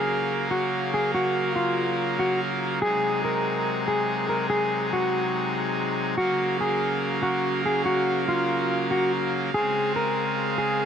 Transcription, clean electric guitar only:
Already playing: G#4
0.51 F#4
0.94 G#4
1.15 F#4
1.56 F4
2.19 F#4
2.82 G#4
3.25 A#4
3.88 G#4
4.29 A#4
4.50 G#4
4.93 F#4
6.18 F#4
6.61 G#4
7.23 F#4
7.66 G#4
7.86 F#4
8.29 F4
8.91 F#4
9.54 G#4
9.96 A#4
10.58 G#4

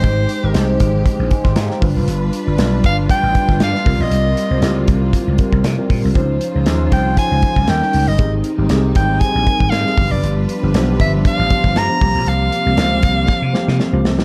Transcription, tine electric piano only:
0.04 G#3 D#4 G4 C5
0.43 G#3 D#4 G4 C5
0.53 G#3 D#4 G4 C5
1.30 D#5 G#5
1.44 G5 C6
1.56 F5 A#5
1.70 C5 G5
1.80 G3 D4 F4 B4
2.45 G3 D4 F4 D5
2.57 G3 D4 F4 B4
3.33 G3 D4 F4 B4
3.73 G3 D4 F4 B4
3.84 G3 C4 F4 A#4
4.49 G3 C4 F4 C5
4.61 G3 C4 E4 G4
4.68 F4
5.38 G3 C4 F4 A#4
5.77 G3 C4 F4 A#4
6.14 F3 C#4 D#4 C5
6.54 F3 C#4 D#4 C5
6.66 F3 C#4 D#4 F4
7.42 F3 C#4 D#4 C5
7.67 G3 C#4 D#4 A#4
7.80 G3 C#4 D#4 A#4
8.18 C4 D#4 G4 G#4
8.57 G3 C4 D#4 G4
8.69 C4 D#4 G4 G#4
9.46 G3 C4 D#4 A#4
9.85 G3 C4 D#4 G#4
9.97 F3 B3 D4 G4
10.62 F3 B3 D4 G4
10.73 F3 B3 D4 G4
11.49 F3 B3 D4 G4
11.89 F3 B3 D4 G4
12.01 F3 A#3 C4 G4
12.65 F3 A#3 C4 G4
12.77 F3 A#3 C4 G4
13.53 F3 A#3 C4 G4
13.93 F3 A#3 C4 G4

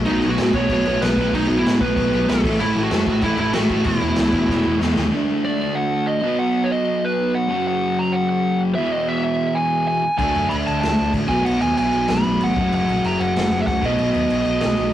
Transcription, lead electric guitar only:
0.06 D#4
0.30 F#4
0.54 C#5
1.02 B4
1.34 D#4
1.59 E4
1.81 B4
2.30 A4
2.60 E4
2.84 F#4
3.23 E4
3.39 E4
3.54 F#4
3.86 E4
5.45 D5
5.75 F#5
6.07 D#5
6.39 F#5
6.64 C#5
6.72 D#5
7.05 B4
7.35 F#5
7.68 F#5
7.99 A#5
8.13 F#5
8.29 F#5
8.75 E5
8.92 D#5
9.08 E5
9.24 E5
9.55 G#5
9.88 G#5
10.18 G#5
10.49 B5
10.67 A5
10.81 A5
11.28 G#5
11.45 F#5
11.62 G#5
11.78 G#5
12.10 B5
12.44 F#5
12.74 F#5
13.06 A#5
13.20 F#5
13.62 E5
13.67 F#5
13.85 D#5

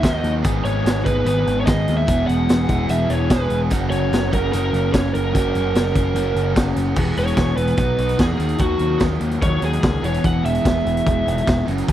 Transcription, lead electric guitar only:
0.05 D#5
0.65 C#5
1.05 B4
1.27 B4
1.60 C#5
1.66 D#5
1.97 E5
2.27 F#5
2.90 E5
3.10 C#5
3.32 B4
3.90 C#5
4.34 A#4
4.52 A#4
4.94 C#5
5.14 A#4
7.19 C#5
7.57 B4
8.21 G#4
8.61 F#4
9.43 C#5
9.65 G#4
10.05 C#5
10.25 F#5
10.45 E5

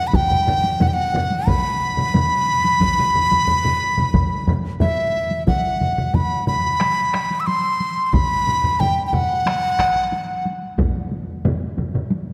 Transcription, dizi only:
0.07 B5
0.15 G5
0.82 F#5
0.88 G5
0.93 F#5
1.47 B5
4.81 E5
5.48 F#5
6.15 B5
6.48 B5
7.40 E6
7.47 C6
8.06 C6
8.13 B5
8.80 G5
9.07 G5
9.13 F#5

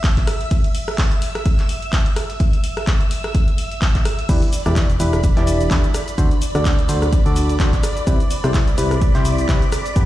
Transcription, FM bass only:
4.29 E1
4.66 E1
5.00 E1
5.37 E1
5.71 E1
6.18 D2
6.55 D2
6.89 D2
7.26 D2
7.60 D2
8.07 C2
8.44 C2
8.78 C2
9.15 C2
9.49 C2
9.96 G1

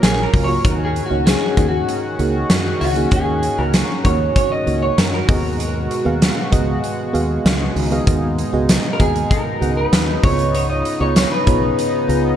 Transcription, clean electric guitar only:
0.03 G#4
0.23 A#4
0.44 C#5
0.64 A#4
0.85 G#4
1.06 F#4
1.26 G#4
1.68 F#4
2.81 F#4
3.12 G#4
3.58 A#4
4.05 C#5
4.36 C#5
4.52 D#5
4.83 C#5
4.98 A#4
5.14 A#4
8.93 A#4
9.00 G#4
9.31 A#4
9.77 B4
10.24 C#5
10.55 C#5
10.70 D#5
11.01 C#5
11.17 C#5
11.32 B4

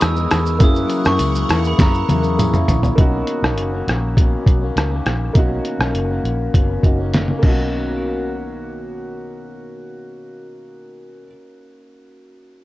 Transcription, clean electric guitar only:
Already playing: E3 G#3 B3 D#4
0.16 B3 D#4
0.20 G#3
0.61 F#2 C#3 E3 A#3 E4
1.04 F#2 C#3 E3 A#3 E4
1.49 C#3 E3 A#3 E4
2.08 F#2 C#3 E3 A#3 E4
2.52 E3 A#3 E4
2.97 B2 D#3 A#3
3.01 C#4
3.42 A#3 C#4
3.46 D#3
3.72 D#3 A#3 C#4
4.18 B2 D#3 A#3 C#4
4.61 A#3 C#4
4.65 D#3
4.91 D#3 A#3 C#4
5.34 B2 D#3 A#3
5.38 C#4
5.80 D#3 A#3 C#4
6.09 D#3 A#3 C#4
6.54 B2 D#3 A#3 C#4
6.98 A#3 C#4
7.03 D#3
7.29 A#3 C#4
7.34 D#3
7.42 B2 D#3
7.48 A#3 C#4

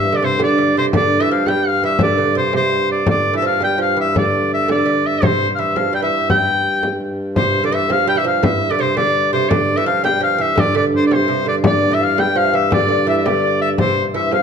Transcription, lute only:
Already playing: E3
0.13 D3
0.22 C3
0.40 D3
0.58 D3
0.77 C3
0.94 D3
1.20 E3
1.31 F3
1.48 G3
1.83 E3
2.01 D3
2.18 D3
2.35 C3
2.53 C3
3.07 D3
3.33 E3
3.42 F3
3.62 G3
3.78 F3
3.97 E3
4.15 D3
4.68 D3
4.86 D3
5.22 C3
5.58 E3
5.76 F3
5.93 G3
6.02 E3
6.30 G3
7.37 C3
7.64 D3
7.72 E3
7.90 F3
8.07 G3
8.15 E3
8.25 F3
8.43 E3
8.71 D3
8.79 C3
8.97 D3
9.33 C3
9.51 D3
9.78 E3
9.86 F3
10.04 G3
10.21 F3
10.38 E3
10.56 D3
10.75 D3
11.11 C3
11.28 C3
11.46 D3
11.64 D3
11.91 E3
12.18 G3
12.36 F3
12.53 E3
12.71 D3
12.89 D3
13.07 E3
13.26 D3
13.79 C3
14.14 E3
14.32 F3

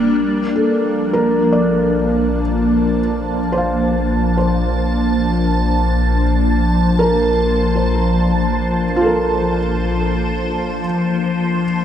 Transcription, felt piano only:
0.55 A4
1.13 A#4
1.52 D5
3.52 C5
3.58 F5
4.37 C5
6.99 A#4
7.75 C5
8.96 F4
9.01 A4
9.06 A#4

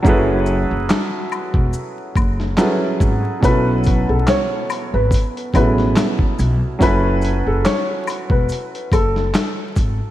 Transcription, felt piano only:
0.02 F#3 C#4 E4 G#4
0.07 A4 B4
2.57 F#3 C#4 E4 G#4 A4 B4
3.40 B2 F#3 C#4
3.45 E4 A4
5.53 B2 F#3 C#4 E4 G#4
5.63 A4
6.79 F#3 C#4 E4 G#5
6.83 A4 B4

